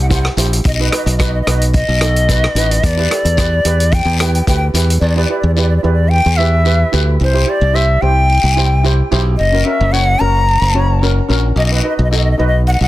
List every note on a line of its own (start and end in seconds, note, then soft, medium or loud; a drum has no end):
0.00 0.27 C2 loud
0.00 0.07 F#5 medium
0.09 0.27 E4 medium
0.09 0.27 G4 medium
0.09 0.28 C5 medium
0.09 0.14 F#5 medium
0.09 kick medium
0.09 closed hi-hat medium
0.09 short guiro medium
0.15 0.21 F#5 medium
0.21 0.28 F#5 medium
0.21 cross-stick medium
0.37 0.60 A#1 loud
0.37 0.62 E4 medium
0.37 0.62 G4 medium
0.37 0.63 C5 medium
0.37 closed hi-hat medium
0.37 short guiro medium
0.53 closed hi-hat medium
0.64 0.88 B1 loud
0.64 0.73 D#5 medium
0.64 kick loud
0.64 closed hi-hat medium
0.64 long guiro medium
0.74 0.81 D#5 medium
0.80 0.87 D#4 medium
0.80 0.87 F#4 medium
0.80 0.88 B4 medium
0.80 0.88 D#5 medium
0.90 1.09 D#4 medium
0.90 1.10 F#4 medium
0.90 0.95 D#5 medium
0.90 cross-stick medium
0.90 closed hi-hat medium
0.94 1.10 B4 medium
0.94 1.03 D#5 medium
1.05 1.40 B1 loud
1.05 1.10 D#5 soft
1.05 closed hi-hat medium
1.11 1.17 D#5 medium
1.17 1.36 D#4 medium
1.17 1.36 F#4 medium
1.17 1.37 B4 medium
1.17 1.24 D#5 medium
1.17 kick medium
1.17 cross-stick medium
1.17 closed hi-hat medium
1.17 short guiro medium
1.27 1.33 D#5 medium
1.34 1.40 D#5 medium
1.42 1.47 D#5 medium
1.47 1.82 B1 medium
1.47 1.80 D#4 medium
1.47 1.80 F#4 medium
1.47 1.81 B4 medium
1.47 1.56 D#5 soft
1.47 cross-stick medium
1.47 closed hi-hat medium
1.57 1.63 D#5 medium
1.61 closed hi-hat medium
1.73 2.86 D#5 medium
1.73 kick loud
1.73 closed hi-hat medium
1.73 long guiro medium
1.88 2.45 B1 loud
2.01 2.18 D#4 medium
2.01 2.19 F#4 medium
2.01 2.19 A4 medium
2.01 cross-stick medium
2.01 closed hi-hat medium
2.01 short guiro medium
2.16 closed hi-hat medium
2.28 2.45 D#4 medium
2.28 2.46 F#4 medium
2.28 2.46 B4 medium
2.28 kick medium
2.28 closed hi-hat medium
2.28 short guiro medium
2.44 cross-stick medium
2.55 2.78 A1 medium
2.55 2.81 D#4 loud
2.55 2.81 F#4 medium
2.55 2.81 B4 loud
2.55 closed hi-hat medium
2.55 short guiro medium
2.71 closed hi-hat medium
2.83 3.06 E2 loud
2.83 3.95 D5 loud
2.83 kick loud
2.83 closed hi-hat medium
2.83 long guiro medium
2.97 3.05 E4 medium
2.97 3.06 G4 medium
2.97 3.06 B4 medium
3.10 3.27 E4 medium
3.10 3.28 G4 medium
3.10 3.28 A4 medium
3.10 cross-stick medium
3.10 closed hi-hat medium
3.25 3.59 E2 loud
3.25 closed hi-hat medium
3.37 3.54 E4 medium
3.37 3.55 G4 medium
3.37 3.55 B4 medium
3.37 kick medium
3.37 cross-stick medium
3.37 closed hi-hat medium
3.37 short guiro medium
3.65 4.00 E2 medium
3.65 3.98 E4 medium
3.65 3.99 G4 medium
3.65 3.99 B4 loud
3.65 closed hi-hat medium
3.80 closed hi-hat medium
3.92 4.20 G5 loud
3.92 kick loud
3.92 closed hi-hat medium
3.92 long guiro medium
4.05 4.40 E2 loud
4.20 4.37 E4 medium
4.20 4.37 G4 medium
4.20 4.38 B4 medium
4.20 4.26 G5 medium
4.20 cross-stick loud
4.20 closed hi-hat medium
4.20 short guiro medium
4.27 4.34 G5 medium
4.34 4.41 G5 medium
4.34 closed hi-hat soft
4.41 4.47 G5 medium
4.47 4.72 D2 medium
4.47 4.64 E4 medium
4.47 4.65 G4 medium
4.47 4.65 B4 medium
4.47 4.56 G5 medium
4.47 kick medium
4.47 closed hi-hat medium
4.47 short guiro medium
4.56 4.64 G5 medium
4.74 4.99 E2 medium
4.74 4.99 E4 medium
4.74 5.00 G4 medium
4.74 5.00 B4 medium
4.74 closed hi-hat medium
4.74 short guiro medium
4.90 closed hi-hat medium
5.01 5.25 E2 medium
5.01 5.08 D5 medium
5.01 long guiro medium
5.09 5.16 D5 medium
5.16 5.24 E4 medium
5.16 5.24 G4 medium
5.16 5.25 B4 medium
5.16 5.23 D5 medium
5.25 5.30 D5 soft
5.30 5.46 E4 medium
5.30 5.47 G4 medium
5.30 5.47 B4 medium
5.30 5.38 D5 medium
5.39 5.77 E2 loud
5.39 5.46 D5 medium
5.47 5.54 D5 medium
5.54 5.74 E4 medium
5.54 5.74 G4 medium
5.54 5.61 D5 soft
5.54 short guiro medium
5.58 5.74 B4 medium
5.58 5.68 D5 medium
5.69 5.76 D5 medium
5.77 5.83 D5 medium
5.83 6.19 E2 medium
5.83 6.17 E4 medium
5.83 6.17 G4 medium
5.83 6.17 B4 medium
5.83 5.91 D5 soft
5.93 6.11 D5 medium
6.09 6.38 G5 loud
6.09 long guiro medium
6.26 6.83 E2 loud
6.37 6.56 E4 medium
6.37 6.56 G4 medium
6.37 6.56 B4 medium
6.37 6.92 E5 loud
6.37 short guiro medium
6.65 6.82 E4 medium
6.65 6.83 G4 medium
6.65 6.83 B4 medium
6.65 short guiro medium
6.92 7.16 D2 medium
6.92 7.17 E4 medium
6.92 7.18 G4 medium
6.92 7.18 B4 medium
6.92 short guiro medium
7.20 7.44 C2 medium
7.20 7.51 C5 medium
7.20 long guiro medium
7.34 7.42 E4 medium
7.34 7.42 G4 medium
7.34 7.43 C5 medium
7.46 7.64 E4 medium
7.46 7.65 G4 medium
7.46 7.65 C5 medium
7.46 7.76 D5 medium
7.61 7.96 C2 loud
7.74 7.91 E4 medium
7.74 7.92 G4 medium
7.74 7.92 C5 medium
7.74 8.03 E5 medium
7.74 short guiro medium
8.01 8.37 C2 medium
8.01 8.35 E4 medium
8.01 8.35 G4 medium
8.01 8.36 C5 medium
8.01 8.84 G5 loud
8.30 long guiro medium
8.44 9.01 C2 loud
8.56 8.74 E4 medium
8.56 8.74 G4 medium
8.56 8.75 C5 medium
8.56 short guiro medium
8.84 9.01 E4 medium
8.84 9.01 G4 medium
8.84 9.02 C5 medium
8.84 short guiro medium
9.11 9.35 B1 loud
9.11 9.36 E4 loud
9.11 9.37 G4 medium
9.11 9.37 C5 loud
9.11 short guiro medium
9.37 9.62 F#1 medium
9.37 9.66 D#5 medium
9.37 long guiro medium
9.52 9.61 C#4 medium
9.52 9.61 F#4 medium
9.52 9.62 A#4 medium
9.65 9.83 C#4 medium
9.65 9.83 F#4 medium
9.65 9.84 A#4 medium
9.65 9.94 E5 medium
9.81 10.15 F#1 loud
9.92 10.10 C#4 medium
9.92 10.10 F#4 medium
9.92 10.10 C#5 medium
9.92 10.21 F#5 loud
9.92 short guiro medium
10.19 10.56 F#1 medium
10.19 10.53 C#4 medium
10.19 10.54 F#4 medium
10.19 10.54 A#4 medium
10.19 11.02 A#5 loud
10.49 long guiro medium
10.61 11.19 F#1 loud
10.74 10.92 C#4 medium
10.74 10.92 F#4 medium
10.74 10.93 C#5 medium
11.02 11.20 C#4 medium
11.02 11.20 F#4 medium
11.02 11.20 A#4 medium
11.02 short guiro medium
11.29 11.53 A#1 loud
11.29 11.54 C#4 loud
11.29 11.55 F#4 medium
11.29 11.55 A#4 loud
11.29 short guiro medium
11.56 11.80 B1 loud
11.56 11.65 D#5 medium
11.56 long guiro medium
11.66 11.73 D#5 medium
11.70 11.79 D#4 medium
11.70 11.79 F#4 medium
11.70 11.80 B4 medium
11.74 11.81 D#5 medium
11.82 12.01 D#4 medium
11.82 12.02 F#4 medium
11.82 12.02 B4 medium
11.82 11.88 D#5 medium
11.89 11.96 D#5 medium
11.97 12.33 B1 loud
11.97 12.03 D#5 soft
12.04 12.10 D#5 medium
12.11 12.29 D#4 medium
12.11 12.30 F#4 medium
12.11 12.30 A4 medium
12.11 12.17 D#5 medium
12.11 short guiro medium
12.18 12.24 D#5 medium
12.24 12.30 D#5 medium
12.31 12.38 D#5 medium
12.38 12.75 B1 medium
12.38 12.72 D#4 medium
12.38 12.72 F#4 medium
12.38 12.73 B4 medium
12.38 12.46 D#5 medium
12.47 12.55 D#5 medium
12.67 12.73 F#5 loud
12.67 long guiro medium
12.73 12.81 F#5 medium
12.81 12.88 B1 loud
12.81 12.88 F#5 medium